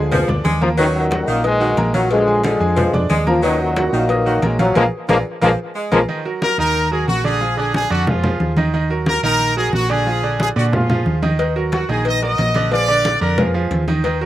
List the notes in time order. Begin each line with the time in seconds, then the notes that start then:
Already playing: D2 D3 F3 G#3 G#4 G#5
0.12 F3, cowbell, high conga, low conga
0.28 D2 D4 D5 D6, high conga, low conga
0.45 D#2 G#3, cowbell, high conga
0.61 F3 A#3 A#4 A#5, high conga
0.78 F#2 A#2 D#3 F#3 D#4 D#5, cowbell, high conga
0.95 A#2 D#3 F#3, high conga
1.11 F#3 F#4 F#5, cowbell, high conga
1.28 A#1 D#3 A#3, high conga
1.44 D#3 G#3 D#4 D#5 D#6, cowbell, high conga
1.60 D#3 F#3 F#4 F#5, high conga
1.77 A#1 A#3 A#4 A#5, cowbell, high conga
1.94 F#3 F4 F5, cowbell, high conga
2.11 D3 F3 G#3, cowbell
2.27 G#3 G#4 G#5, high conga
2.44 D3 F3 G#3 F4 F5, cowbell, high conga
2.60 F2 G#3 G#4 G#5, high conga
2.76 F3, cowbell, high conga, low conga
2.93 F2 D4 D5 D6, high conga, low conga
3.10 D#2 G#3, cowbell, high conga
3.26 F3 A#3 A#4 A#5, high conga
3.43 F#2 A#2 D#3 F#3 D#4 D#5, cowbell
3.60 A#2 D#3 F#3, high conga
3.76 F#3 F#4 F#5, cowbell, high conga
3.87 B3
3.93 A#1 D#3 F#3 A#3, high conga
4.09 D#4 D#5 D#6, cowbell, high conga
4.26 D#3 F#3 F#4 F#5, high conga
4.42 A#1 G#3 A#3 A#4 A#5, cowbell, high conga
4.59 F3 F#3 F4 F5, cowbell, high conga
4.75 A#1 F3 G#3 A#3 F4 G#4 A#4, cowbell, high conga
5.09 A#1 D3 F3 G#3 A#3 F4 G#4 A#4, cowbell, high conga
5.41 A#1 F3 G#3 A#3 F4 G#4 A#4, cowbell, high conga
5.75 G#3
5.92 A#1 F3 G#3 A#3 F4 G#4 A#4, cowbell, high conga
6.08 D#3 D#4 D#5, high conga
6.25 F#3 F#4 A#4, high conga
6.42 A#4, high conga
6.58 D#2 D#3 D#4 A#4 D#5, high conga
6.75 high conga
6.91 F#3 F#4 G#4 A#4, high conga
7.08 A#1 F#4, high conga
7.24 D3 D4 G#4 D5, high conga
7.41 F3 F4 G#4, high conga
7.57 D3 D4 G#4 D5, high conga
7.74 G#4, high conga
7.90 F2 D3 D4 F#4 D5, high conga
8.07 F3 F4 G#4, high conga, low conga
8.23 F3 F4 G#4, high conga, low conga
8.40 D#2, high conga
8.57 D#3 D#4 D#5, high conga
8.73 D#3 D#4 D#5, high conga
8.90 F#3 F#4 A#4, high conga
9.06 A#4, high conga
9.23 A#1 D#3 D#4 A#4 D#5, high conga
9.40 high conga
9.56 F#3 F#4 G#4 A#4, high conga
9.73 A#1 F#4, high conga
9.90 D3 D4 G#4 D5
10.06 F3 F4 G#4, high conga
10.23 D3 D4 D5, high conga
10.40 G#4, high conga
10.56 A#2 D3 D4 F#4 D5, high conga
10.72 F3 F4 G#4, high conga, low conga
10.89 F3 F4 G#4, high conga, low conga
11.06 D#2, high conga
11.22 D#3 D#4 D#5, high conga
11.39 D#3 D#4 D#5, cowbell, high conga
11.56 F#3 F#4 A#4, high conga
11.72 F#4, cowbell, high conga
11.89 A#1 D#3 D#4 G#4 D#5, high conga
12.05 D#5, cowbell, high conga
12.22 F#3 F#4 A#4 D#5, high conga
12.38 A#1, cowbell, high conga
12.54 D3 D4 D5, cowbell, high conga
12.71 F3 F4 G#4 D5, cowbell, high conga
12.88 D3 D4 D5, high conga
13.05 cowbell, high conga
13.21 F2 D3 D4 A#4 D5, high conga
13.38 F3 F4 G#4, cowbell, high conga, low conga
13.54 F3 F4 G#4, high conga
13.71 D#2, cowbell, high conga
13.88 D#3 D#4 D#5, high conga
14.04 D#3 D#4 D#5, cowbell
14.21 F#3 F#4 A#4, high conga